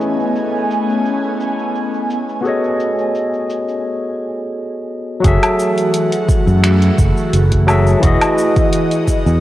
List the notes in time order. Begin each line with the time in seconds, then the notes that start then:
Already playing: A3 B3 C#4 E4 G#4 B4 C#5 D#5 G#5
0.01 cabasa
0.19 cabasa
0.36 cabasa
0.54 cabasa
0.71 cabasa
0.89 cabasa
1.05 cabasa
1.24 cabasa
1.40 cabasa
1.59 cabasa
1.75 cabasa
1.94 cabasa
2.10 cabasa
2.29 cabasa
2.41 B3 F#4 G#4
2.45 A4 C#5 D#5, cabasa
2.64 cabasa
2.80 cabasa
2.99 cabasa
3.15 cabasa
3.34 cabasa
3.50 cabasa
3.69 cabasa
5.20 F#3 F#4 G#4
5.24 F#1 E3 A3 F#4 A4 E5, kick, closed hi-hat, cabasa
5.43 closed hi-hat, cabasa, low woodblock
5.59 cabasa
5.78 closed hi-hat, cabasa
5.94 closed hi-hat, cabasa
6.12 closed hi-hat, cabasa
6.29 kick, cabasa
6.47 F#2, cabasa
6.63 finger snap, closed hi-hat, cabasa
6.82 closed hi-hat
6.98 F#1, kick, cabasa
7.17 cabasa
7.33 F#1, closed hi-hat, cabasa
7.52 kick, closed hi-hat
7.66 F#3 F#4 G#4 A4 E5, cabasa, low woodblock
7.87 cabasa
8.00 E1 E3 E4 F#4 D#5, kick, closed hi-hat, cabasa
8.05 G#4 D#5
8.21 closed hi-hat, cabasa, low woodblock
8.38 cabasa
8.56 kick, closed hi-hat, cabasa
8.73 closed hi-hat, cabasa
8.91 closed hi-hat, cabasa
9.08 kick, cabasa
9.26 E2, cabasa